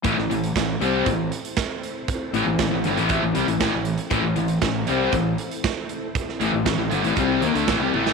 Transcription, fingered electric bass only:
X:1
M:4/4
L:1/16
Q:1/4=118
K:Am
V:1 name="Fingered electric bass" clef=bass
A,,, A,,, A,,,2 A,,,2 C,,2 A,,,2 z6 | z2 A,,, A,,, A,,, A,,, G,,, A,,,2 A,,, C,, A,,, A,,, A,,,2 z | A,,, A,,, A,,,2 A,,,2 C,,2 A,,,2 z6 | z2 A,,, A,,, A,,, A,,, G,,, A,,, C,,2 ^D,, =D,, A,,, C,, A,,,2 |]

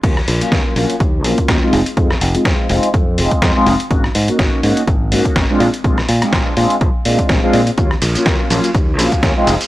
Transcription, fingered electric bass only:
X:1
M:4/4
L:1/8
Q:"Swing 16ths" 1/4=124
K:Ebdor
V:1 name="Fingered electric bass" clef=bass
E,, B,,, E,, B,,, E,, B,,, E,, F,,, | F,, F,,, F,, F,,, F,, F,,, F,, F,,, | A,,, A,, A,,, A,, A,,, A,, A,,, B,, | B,,, B,, B,,, B,, B,,, B,, B,,, B,, |
E,, B,,, E,, B,,, E,, B,,, E,, F,,, |]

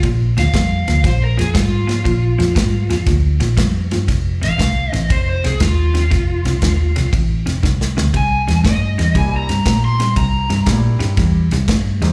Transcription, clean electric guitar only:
X:1
M:4/4
L:1/8
Q:"Swing" 1/4=118
K:F
V:1 name="Clean electric guitar" clef=bass
[B,,F,] [B,,F,] [B,,G,] [B,,F,] [B,,F,] [B,,F,] [B,,G,] [B,,F,] | [B,,F,] [B,,F,] [B,,G,] [B,,F,] [B,,F,] [B,,F,] [B,,G,] [B,,F,] | [F,,C,] [F,,C,] [F,,D,] [F,,C,] [F,,C,] [F,,C,] [F,,D,] [F,,C,] | [F,,C,] [F,,C,] [F,,D,] [F,,C,] [F,,C,] [F,,C,] [F,,D,] [F,,C,] |
[C,G,] [C,G,] [C,A,] [C,G,] [C,G,] [C,G,] [C,A,] [C,G,] | [C,G,] [C,G,] [C,A,] [C,G,] [C,G,] [C,G,] [C,A,] [C,G,] |]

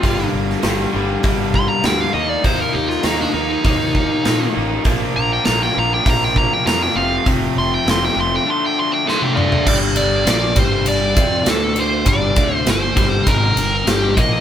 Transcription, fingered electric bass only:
X:1
M:4/4
L:1/8
Q:1/4=100
K:Gm
V:1 name="Fingered electric bass" clef=bass
G,,, G,,, G,,, G,,, G,,,2 D,, E,, | E,, E,, E,, E,, E,,2 B,, A,,, | B,,, B,,, B,,, B,,, B,,,2 F,, F,,, | F,,, F,,, F,,, F,,, z4 |
G,,,2 B,,, G,,,2 F,, D,,2 | G,,, D,, G,,, G,,, _A,,, G,,, G,,, B,,, |]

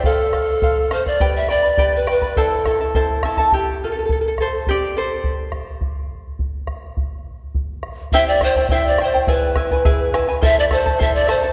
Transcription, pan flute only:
X:1
M:2/4
L:1/16
Q:1/4=104
K:C
V:1 name="Pan flute"
A6 c d- | d e d3 B B2 | A6 z2 | z8 |
z8 | z8 | z8 | e d c2 e d c2 |
B6 z2 | e d c2 e d c2 |]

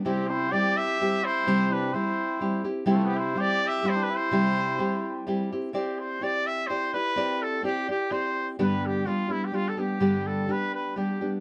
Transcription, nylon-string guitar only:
X:1
M:3/4
L:1/8
Q:"Swing" 1/4=127
K:C
V:1 name="Nylon-string guitar"
[C,G,CEG]2 [G,CEG]2 [G,CEG]2 | [C,G,CEG]2 [G,CEG]2 [G,CEG] [CEG] | [C,G,CEG]2 [G,CEG]2 [G,CEG]2 | [C,G,CEG]2 [G,CEG]2 [G,CEG] [CEG] |
[CEGd]2 [CEGd]2 [CEGd] [EGd] | [CEGd]2 [CEGd] [EGd] [CEGd]2 | [G,,D,G,B,DG]2 [G,B,DG] [G,B,DG] [G,B,DG] [G,B,DG] | [G,,D,G,B,DG]2 [G,B,DG]2 [G,B,DG] [G,B,DG] |]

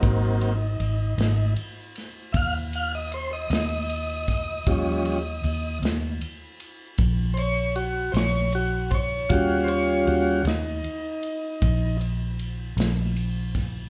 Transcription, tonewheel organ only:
X:1
M:12/8
L:1/16
Q:3/8=52
K:Ab
V:1 name="Tonewheel organ"
E8 z4 [_f=f] z f e c e e6- | e6 z8 [cd]2 _G2 [cd]2 G2 [cd]2 | _G2 [cd]2 G2 E8 z8 z2 |]
V:2 name="Tonewheel organ"
[_G,B,C]2 z16 z6 | [F,G,D]2 z16 z6 | [G,DF]6 z16 z2 |]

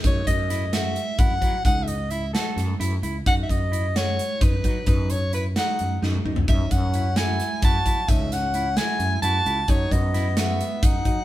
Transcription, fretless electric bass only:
X:1
M:7/8
L:1/8
Q:1/4=131
K:F#dor
V:1 name="Fretless electric bass" clef=bass
F,, F,,4 F,, F, | C,,4 F,, F,, C,, | F,, F,,4 F,, F, | F,,4 F,, F,, F,, |
F,, F,,4 F,, F, | C,,4 F,, F,, C,, | F,, F,,4 F,, F, |]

